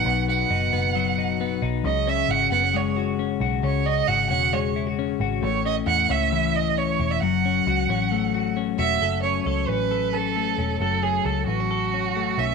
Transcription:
X:1
M:4/4
L:1/16
Q:1/4=134
K:F#dor
V:1 name="Violin"
f2 f12 z2 | d2 e2 f2 f2 c2 z6 | c2 d2 f2 f2 c2 z6 | c2 d2 f2 e4 d2 c3 e |
f12 z2 e2- | [K:F#m] e2 c2 c2 B4 A6 | A2 G2 A2 F8 e2 |]
V:2 name="Clean electric guitar"
[B,,F,B,D]2 B,2 D2 B,2 F,2 D2 B,2 D2 | C,2 C2 E F B, C G,2 F2 C2 F2 | C,2 C2 F2 C2 G,2 E F C2 F2 | A,,2 C2 E2 C2 E,2 E2 C2 E2 |
F,2 C2 F2 C2 A,2 F2 C2 F2 | [K:F#m] [F,,A]2 C2 A2 C2 A2 C2 A,2 C2 | [F,,A]2 C2 A2 B, C A2 C2 A,2 C2 |]
V:3 name="Picked electric bass" clef=bass
B,,,4 F,,,2 F,,,8 B,,,2 | C,,4 G,,,2 F,,,8 B,,,2 | C,,4 G,,,2 E,,,8 G,,,2 | A,,,4 E,,2 C,,8 E,,,2 |
F,,,4 C,,2 A,,,8 E,,,2 | [K:F#m] F,,,4 C,,2 A,,,8 E,,,2 | F,,,4 C,,2 A,,,8 B,,,2 |]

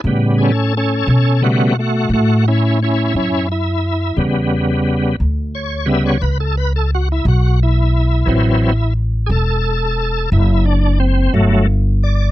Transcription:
X:1
M:12/8
L:1/16
Q:3/8=59
K:Amix
V:1 name="Tonewheel organ"
z2 [C^GA]2 [CA]2 [CA]2 [A,F]2 [A,F]2 [A,F]2 [CE]2 [CE]2 [CE]2 E4 | z8 c2 e c B A B A F E F2 E4- | E4 z2 [^GA]6 E2 D2 =C2 [F,A,]2 z2 d2 |]
V:2 name="Tonewheel organ" clef=bass
[C,G,B,]2 z6 [C,G,B,]2 z12 z2 | [C,G,B,]6 z4 [C,G,B,]2 z12 | [E,F,=C]2 z16 z6 |]
V:3 name="Upright bass" clef=bass
A,,6 B,,6 A,,6 F,,6 | E,,6 D,,6 C,,6 B,,,6 | A,,,6 E,,,6 F,,,6 G,,,6 |]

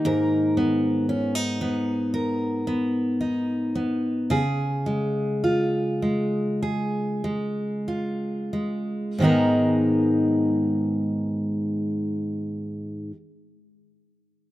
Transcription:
X:1
M:4/4
L:1/16
Q:1/4=49
K:G#m
V:1 name="Steel-string acoustic guitar"
[G,,A]2 B,2 C D B,2 A2 B,2 D2 B,2 | [C,G]2 G,2 ^E2 G,2 G2 G,2 E2 G,2 | [G,,D,G,B,DA]16 |]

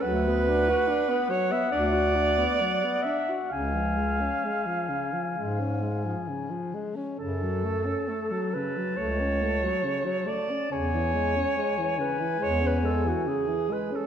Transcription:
X:1
M:4/4
L:1/16
Q:1/4=69
K:C#phr
V:1 name="Clarinet"
f16 | g12- g2 z2 | a16 | g12- g2 z2 |]
V:2 name="Alto saxophone"
B6 c e d6 e2 | ^e12 z4 | A6 B2 c6 d2 | c6 B2 c B A F G2 B A |]
V:3 name="Tenor saxophone" clef=bass
F, B, D F D B, F, B, D F D B, F, B, D F | C, ^E, G, C G, E, C, E, G, C G, E, C, E, G, C | C, F, A, C A, F, C, F, A, C A, F, C, F, A, C | C, E, G, C G, E, C, E, G, C G, E, C, E, G, C |]
V:4 name="Bass clarinet" clef=bass
D,,4 z4 D,,4 z4 | C,,4 z4 G,,4 z4 | F,,4 z4 C,,4 z4 | E,,4 z4 E,,4 z4 |]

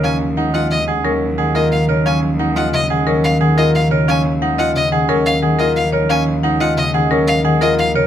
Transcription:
X:1
M:6/4
L:1/8
Q:1/4=178
K:Ebm
V:1 name="Violin"
a z2 g e z4 e f z | a z2 g e z2 f z e f z | a z2 g e z2 f z e f z | a z2 g e z2 f z e f z |]
V:2 name="Marimba"
f z g e z g B z g B z d | f z g e z g B z g B z d | f z g e z g B z g B z d | f z g e z g B z g B z d |]
V:3 name="Grand piano"
D z E F z A D z A F z B | D z E F z A D z A F z B | D z E F z A D z A F z B | D z E F z A D z A F z B |]
V:4 name="Harp" clef=bass
[D,E,F,G,A,B,] F, A,2 D,2 G,2 E, B, F, D, | G, F, A,2 D, E, G,2 E, B, F, D, | G, F, A,2 D, E, G,2 E, B, F, D, | G, F, A, F, D, E, G,2 E, B, F, D, |]
V:5 name="Cello" clef=bass
E,,12- | E,,12- | E,,12- | E,,12 |]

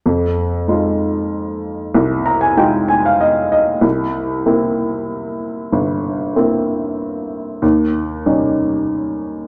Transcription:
X:1
M:3/4
L:1/16
Q:1/4=95
K:Fm
V:1 name="Upright piano"
z12 | z2 b a g2 a f e2 e2 | z12 | z12 |
z12 |]
V:2 name="Upright piano"
F,,4 [A,EF]8 | C,,4 [A,EF]8 | C,,4 [B,C=E]8 | G,,,4 [B,C=E]8 |
E,,4 [G,DE]8 |]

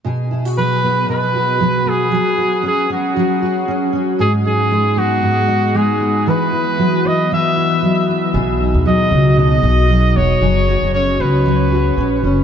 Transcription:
X:1
M:4/4
L:1/16
Q:"Swing 16ths" 1/4=116
K:B
V:1 name="Trumpet"
z4 B4 B6 G2- | G4 G2 F8 z2 | G2 G4 F6 G4 | B6 d2 e6 z2 |
z4 d4 d6 c2- | c4 c2 B8 z2 |]
V:2 name="Steel-string acoustic guitar"
[B,,G]2 E F F,2 B,2 B,,2 F2 F,2 B,2 | [F,G]2 F2 C2 C2 F,2 F2 C2 C2 | [G,,G]2 D2 G,2 B,2 G,,2 D2 G,2 B,2 | [E,B]2 E2 F,2 B,2 E,2 E2 F,2 B,2 |
[B,,G]2 D2 F,2 B,2 B,,2 D2 F,2 B,2 | [F,G]2 F2 C2 C2 F,2 F2 C2 C2 |]
V:3 name="Upright bass" clef=bass
z16 | z16 | z16 | z16 |
B,,,3 D,,3 C,,4 B,,,4 E,,,2 | F,,,3 F,,,3 C,,6 A,,,2 F,,,2 |]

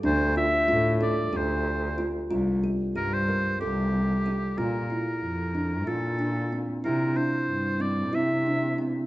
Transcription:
X:1
M:7/8
L:1/16
Q:1/4=92
K:Cmix
V:1 name="Oboe"
c2 e4 d2 c4 z2 | z4 B c3 G6 | B8 A4 z2 | B2 c4 d2 e4 z2 |]
V:2 name="Kalimba"
D2 F2 F2 A2 G4 F2 | F2 G2 G2 B2 A4 G2 | F2 E4 D2 F2 D2 C2 | E2 D4 C2 E2 D2 C2 |]
V:3 name="Cello" clef=bass
D,,2 z2 A,,4 D,,6 | C,,2 z2 G,,4 C,,6 | B,,2 z2 F,,4 B,,6 | C,2 z2 G,,4 C,6 |]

